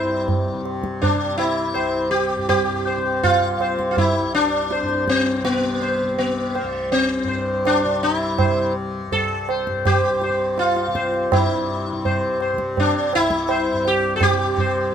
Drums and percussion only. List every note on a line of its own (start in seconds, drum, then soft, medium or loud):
0.28 tabla tin medium
0.28 tabla ge medium
0.65 tabla na medium
0.84 tabla ke medium
1.03 tabla tin medium
1.03 tabla ge medium
1.39 tabla na medium
1.75 tabla na medium
2.49 tabla na medium
2.49 tabla ge medium
3.24 tabla tin medium
3.24 tabla ge medium
3.61 tabla na medium
3.79 tabla ke medium
3.97 tabla tin medium
3.97 tabla ge medium
4.71 tabla te medium
4.89 tabla te medium
5.08 tabla ke soft
5.26 tabla te soft
5.45 tabla te medium
5.82 tabla te medium
6.18 tabla tin medium
6.55 tabla na soft
6.92 tabla tin medium
7.65 tabla na medium
8.39 tabla na medium
8.39 tabla ge medium
9.12 tabla tin medium
9.12 tabla ge medium
9.49 tabla na medium
9.67 tabla ke medium
9.85 tabla na medium
9.85 tabla ge medium
10.22 tabla te medium
10.58 tabla te medium
10.77 tabla te medium
10.95 tabla ke medium
11.14 tabla te medium
11.32 tabla na loud
11.32 tabla ge medium
12.05 tabla tin medium
12.05 tabla ge medium
12.40 tabla na medium
12.58 tabla ke medium
12.77 tabla tin medium
12.77 tabla ge medium
13.13 tabla na medium
13.30 tabla ke medium
13.49 tabla na medium
13.85 tabla na medium
14.21 tabla na medium
14.21 tabla ge medium
14.58 tabla ge soft